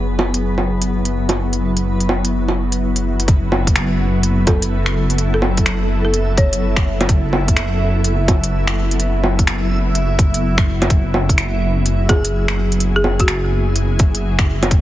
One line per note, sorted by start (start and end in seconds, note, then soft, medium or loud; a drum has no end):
0.00 3.27 F#1 medium
0.00 10.90 F#3 medium
0.00 3.29 B3 medium
0.00 10.90 B3 medium
0.00 14.81 E4 medium
0.00 3.29 G#4 medium
0.00 3.29 B4 medium
0.19 low bongo medium
0.34 closed hi-hat medium
0.58 low bongo soft
0.82 closed hi-hat soft
1.05 closed hi-hat soft
1.29 closed hi-hat soft
1.29 low bongo medium
1.53 closed hi-hat soft
1.77 closed hi-hat medium
2.00 closed hi-hat soft
2.09 low bongo medium
2.25 closed hi-hat medium
2.48 low bongo soft
2.72 closed hi-hat medium
2.96 closed hi-hat soft
3.20 closed hi-hat medium
3.28 10.88 F#1 medium
3.28 14.81 E4 medium
3.28 14.81 E5 medium
3.28 kick loud
3.28 closed hi-hat medium
3.52 low bongo medium
3.67 10.90 A4 medium
3.67 kick medium
3.67 closed hi-hat medium
3.76 finger snap loud
3.76 closed hi-hat medium
4.23 closed hi-hat medium
4.47 4.73 A4 medium
4.47 kick loud
4.47 closed hi-hat medium
4.47 low bongo medium
4.62 closed hi-hat medium
4.86 finger snap loud
5.10 closed hi-hat soft
5.18 closed hi-hat medium
5.34 5.59 A4 medium
5.42 low bongo medium
5.57 kick medium
5.57 closed hi-hat medium
5.66 finger snap loud
5.66 closed hi-hat medium
6.05 6.30 A4 medium
6.14 closed hi-hat medium
6.37 7.06 C#5 medium
6.37 kick loud
6.37 closed hi-hat medium
6.53 closed hi-hat medium
6.76 finger snap loud
6.76 kick loud
7.01 closed hi-hat soft
7.01 low bongo medium
7.09 kick loud
7.09 closed hi-hat medium
7.33 low bongo medium
7.48 kick medium
7.48 closed hi-hat medium
7.57 finger snap loud
7.57 closed hi-hat medium
8.04 closed hi-hat medium
8.28 kick loud
8.28 closed hi-hat medium
8.28 low bongo medium
8.44 closed hi-hat medium
8.67 finger snap loud
8.91 closed hi-hat soft
9.00 closed hi-hat medium
9.24 low bongo medium
9.39 kick medium
9.39 closed hi-hat medium
9.47 finger snap loud
9.47 closed hi-hat medium
9.95 closed hi-hat medium
10.19 kick loud
10.19 closed hi-hat medium
10.34 closed hi-hat medium
10.58 finger snap loud
10.58 kick loud
10.82 closed hi-hat soft
10.82 low bongo medium
10.90 14.81 F#1 medium
10.90 14.81 F#3 loud
10.90 kick loud
10.90 closed hi-hat soft
11.14 low bongo medium
11.27 14.81 B3 medium
11.27 kick medium
11.27 closed hi-hat medium
11.34 14.81 G#4 medium
11.34 finger snap loud
11.34 closed hi-hat medium
11.86 closed hi-hat medium
12.09 12.35 G#4 medium
12.09 kick loud
12.09 closed hi-hat medium
12.09 low bongo soft
12.25 closed hi-hat medium
12.48 finger snap loud
12.72 closed hi-hat soft
12.80 closed hi-hat medium
12.96 13.21 G#4 medium
13.04 low bongo medium
13.20 13.52 F#4 medium
13.20 kick medium
13.20 closed hi-hat medium
13.28 finger snap loud
13.28 closed hi-hat medium
13.76 closed hi-hat medium
13.99 kick loud
13.99 closed hi-hat medium
14.15 closed hi-hat medium
14.39 finger snap loud
14.39 kick loud
14.63 closed hi-hat soft
14.63 low bongo medium
14.71 kick loud
14.71 closed hi-hat medium